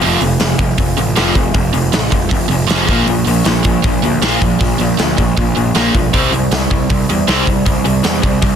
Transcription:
0.01 picked electric bass F1, overdriven electric guitar F2 C3 F3, open hi-hat
0.21 picked electric bass F1, overdriven electric guitar F2 C3, open hi-hat
0.40 picked electric bass F1, overdriven electric guitar F2 C3, snare, open hi-hat
0.58 picked electric bass F1, overdriven electric guitar F2 C3, kick, open hi-hat
0.78 picked electric bass F1, overdriven electric guitar F2 C3, kick, open hi-hat
0.97 picked electric bass A1, overdriven electric guitar F2 C3, open hi-hat
1.16 picked electric bass F1, overdriven electric guitar F2 C3 F3, snare, open hi-hat
1.35 picked electric bass F1, overdriven electric guitar F2 C3, kick, open hi-hat
1.54 picked electric bass F1, overdriven electric guitar F2 C3, kick, open hi-hat
1.73 picked electric bass F1, overdriven electric guitar F2 C3, open hi-hat
1.93 picked electric bass A1, overdriven electric guitar F2 C3, snare, open hi-hat
2.12 picked electric bass F1, overdriven electric guitar F2 C3, kick, open hi-hat
2.31 picked electric bass F1, overdriven electric guitar F2 C3, kick, open hi-hat
2.50 picked electric bass F1, overdriven electric guitar F2 C3, open hi-hat
2.67 picked electric bass F1, overdriven electric guitar F2, snare, open hi-hat
2.71 overdriven electric guitar F2 C3 F3
2.89 picked electric bass A#1, overdriven electric guitar A#2 F3 A#3, kick, open hi-hat
3.07 picked electric bass A#1, overdriven electric guitar A#2 F3, open hi-hat
3.26 picked electric bass A#1, overdriven electric guitar A#2 F3, open hi-hat
3.45 picked electric bass A#1, overdriven electric guitar A#2 F3, snare, open hi-hat
3.64 picked electric bass A#1, overdriven electric guitar A#2 F3, kick, open hi-hat
3.84 picked electric bass A#1, overdriven electric guitar A#2 F3, kick, open hi-hat
4.03 picked electric bass D2, overdriven electric guitar A#2 F3, open hi-hat
4.22 picked electric bass A#1, overdriven electric guitar A#2 F3 A#3, snare, open hi-hat
4.42 picked electric bass A#1, overdriven electric guitar A#2 F3, kick, open hi-hat
4.61 picked electric bass A#1, overdriven electric guitar A#2 F3, kick, open hi-hat
4.79 picked electric bass A#1, overdriven electric guitar A#2 F3, open hi-hat
4.99 picked electric bass D2, overdriven electric guitar A#2 F3, snare, open hi-hat
5.18 picked electric bass A#1, overdriven electric guitar A#2 F3, kick, open hi-hat
5.37 picked electric bass A#1, overdriven electric guitar A#2 F3, kick, open hi-hat
5.56 picked electric bass A#1, overdriven electric guitar A#2 F3, open hi-hat
5.75 picked electric bass A#1, overdriven electric guitar A#2 F3 A#3, snare, open hi-hat
5.94 picked electric bass B1, overdriven electric guitar A#2 F3, kick, open hi-hat
6.13 picked electric bass C2, overdriven electric guitar C3 G3 C4, kick, open hi-hat
6.32 picked electric bass C2, overdriven electric guitar C3 G3, open hi-hat
6.52 picked electric bass C2, overdriven electric guitar C3 G3, snare, open hi-hat
6.71 picked electric bass C2, overdriven electric guitar C3 G3, kick, open hi-hat
6.90 picked electric bass C2, overdriven electric guitar C3 G3, kick, open hi-hat
7.09 picked electric bass E2, overdriven electric guitar C3 G3, open hi-hat
7.28 picked electric bass C2, overdriven electric guitar C3 G3 C4, snare, open hi-hat
7.46 picked electric bass C2, overdriven electric guitar C3 G3, kick, open hi-hat
7.65 picked electric bass C2, overdriven electric guitar C3 G3, kick, open hi-hat
7.84 picked electric bass C2, overdriven electric guitar C3 G3, open hi-hat
8.03 picked electric bass E2, overdriven electric guitar C3 G3, snare, open hi-hat
8.22 picked electric bass C2, overdriven electric guitar C3 G3, kick, open hi-hat
8.42 picked electric bass C2, overdriven electric guitar C3 G3, kick, open hi-hat

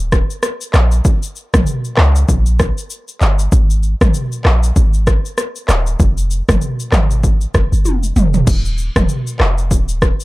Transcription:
Already playing: 808-style bass D#1
0.12 kick, cross-stick, shaker
0.30 shaker
0.43 cross-stick, shaker
0.61 shaker
0.74 808-style bass A#1, cross-stick, clap, shaker
0.92 shaker
1.05 kick, shaker
1.23 shaker
1.36 shaker
1.54 808-style bass A#1, kick, cross-stick, mid tom, shaker
1.67 shaker
1.85 shaker
1.97 808-style bass C#2, cross-stick, clap
2.16 shaker
2.29 808-style bass A#1, kick, shaker
2.46 shaker
2.59 kick, cross-stick, shaker
2.78 shaker
2.90 shaker
3.08 shaker
3.21 808-style bass G1, clap, shaker
3.39 shaker
3.52 808-style bass G#1, kick, shaker
3.70 shaker
3.83 shaker
4.01 808-style bass G#1, kick, cross-stick, mid tom, shaker
4.14 shaker
4.32 shaker
4.45 808-style bass A#1, cross-stick, clap
4.63 shaker
4.76 808-style bass G#1, kick, shaker
4.94 shaker
5.07 kick, cross-stick, shaker
5.25 shaker
5.38 cross-stick, shaker
5.56 shaker
5.69 808-style bass D#1, cross-stick, clap, shaker
5.87 shaker
6.00 808-style bass F1, kick, shaker
6.18 shaker
6.31 shaker
6.49 808-style bass F1, kick, cross-stick, mid tom, shaker
6.62 shaker
6.80 shaker
6.92 808-style bass G#1, cross-stick, clap, mid tom, shaker
7.11 shaker
7.24 kick, shaker
7.41 shaker
7.54 808-style bass F1, kick, cross-stick, shaker
7.72 808-style bass G1, shaker
7.85 808-style bass F1, high tom, shaker
8.03 shaker
8.16 808-style bass F1, mid tom, shaker
8.34 floor tom, shaker
8.47 808-style bass D#1, kick, crash, shaker
8.65 shaker
8.78 shaker
8.96 808-style bass D#1, kick, cross-stick, mid tom, shaker
9.09 shaker
9.27 shaker
9.40 808-style bass F1, cross-stick, clap
9.58 shaker
9.71 808-style bass D#1, kick, shaker
9.89 shaker
10.02 kick, cross-stick, shaker
10.20 shaker

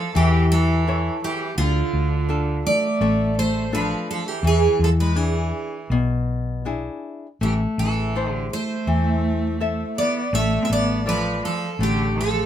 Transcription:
Already playing: cello F3, twelve-string acoustic guitar A4
0.15 fingered electric bass E2, cello E3, nylon-string guitar E3, twelve-string acoustic guitar G4
0.52 cello E3, twelve-string acoustic guitar A4
0.87 nylon-string guitar E4 A4 C#5
1.22 cello E3, twelve-string acoustic guitar G4
1.57 fingered electric bass D2, cello D3, nylon-string guitar D3, twelve-string acoustic guitar F4
1.93 fingered electric bass D2
2.29 nylon-string guitar D4 F4 A4
2.65 cello A3, twelve-string acoustic guitar D5
3.01 fingered electric bass A1, nylon-string guitar A3
3.37 cello A3, twelve-string acoustic guitar C5
3.72 cello F3, nylon-string guitar D4 F4 A4, twelve-string acoustic guitar B4
4.10 cello F3, twelve-string acoustic guitar A4
4.27 cello E3, twelve-string acoustic guitar G4
4.43 fingered electric bass E2, nylon-string guitar E3, cello E3
4.47 twelve-string acoustic guitar G#4
4.79 fingered electric bass E2, cello F3
4.84 twelve-string acoustic guitar A4
4.99 cello G#3, twelve-string acoustic guitar B4
5.16 cello E3, nylon-string guitar D4 E4 G#4, twelve-string acoustic guitar G#4
5.90 fingered electric bass B1, nylon-string guitar B2
6.65 nylon-string guitar D4 E4 G#4
7.41 fingered electric bass A1, cello E3, nylon-string guitar A3, twelve-string acoustic guitar G4
7.78 fingered electric bass A1, cello E3, twelve-string acoustic guitar A4
8.15 nylon-string guitar E4 A4 C5
8.30 cello D3
8.34 twelve-string acoustic guitar G4
8.52 cello A3, twelve-string acoustic guitar C5
8.87 fingered electric bass E2, nylon-string guitar E3
9.60 nylon-string guitar E4 A4 E5
9.97 cello B3, twelve-string acoustic guitar D5
10.33 fingered electric bass A1, nylon-string guitar A3, cello A3, twelve-string acoustic guitar E5
10.63 cello C4, twelve-string acoustic guitar E5
10.69 fingered electric bass A1, cello B3, twelve-string acoustic guitar D5
11.06 cello F3, nylon-string guitar F4 A4 D5, twelve-string acoustic guitar B4
11.42 cello F3, twelve-string acoustic guitar A4
11.79 fingered electric bass A1, cello D3, nylon-string guitar A3
11.83 twelve-string acoustic guitar G4
12.14 cello F3
12.21 twelve-string acoustic guitar A4

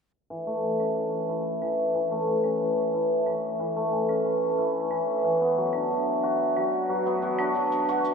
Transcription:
0.14 cabasa
0.30 hammered dulcimer E3, cabasa
0.46 hammered dulcimer A3, cabasa
0.63 hammered dulcimer E3, cabasa
0.80 hammered dulcimer C#4, cabasa, claves
0.96 hammered dulcimer E3, cabasa
1.13 cabasa
1.29 hammered dulcimer E4, cabasa
1.46 cabasa
1.62 hammered dulcimer E3, claves
1.94 hammered dulcimer E3, cabasa
2.11 hammered dulcimer A3, cabasa
2.28 hammered dulcimer E3, cabasa
2.44 hammered dulcimer C#4, cabasa, claves
2.50 cabasa
2.56 cabasa
2.61 hammered dulcimer E3, cabasa
2.66 cabasa
2.72 cabasa
2.77 cabasa
2.94 hammered dulcimer E4, cabasa
3.10 cabasa
3.26 hammered dulcimer E3, cabasa, claves
3.43 cabasa
3.60 hammered dulcimer E3, cabasa
3.76 hammered dulcimer A3, cabasa
3.92 hammered dulcimer E3, cabasa
4.09 hammered dulcimer C#4, cabasa, claves
4.25 hammered dulcimer E3
4.42 cabasa
4.59 hammered dulcimer E4, cabasa
4.75 cabasa
4.91 hammered dulcimer E3, cabasa, claves
5.08 cabasa
5.24 hammered dulcimer E3, cabasa
5.41 hammered dulcimer B3, cabasa
5.57 hammered dulcimer F#3, cabasa
5.73 hammered dulcimer D4, cabasa, claves
5.90 hammered dulcimer F#3, cabasa
5.93 cabasa
5.95 cabasa
5.98 cabasa
6.01 cabasa
6.04 cabasa
6.06 cabasa
6.23 hammered dulcimer F#4, cabasa
6.40 cabasa
6.56 hammered dulcimer F#3, cabasa, claves
6.73 cabasa
6.89 hammered dulcimer F#3
7.06 hammered dulcimer B3, cabasa
7.22 hammered dulcimer F#3, cabasa
7.38 hammered dulcimer D4, cabasa, claves
7.55 hammered dulcimer F#3, cabasa
7.72 cabasa
7.89 hammered dulcimer F#4, cabasa
8.05 cabasa

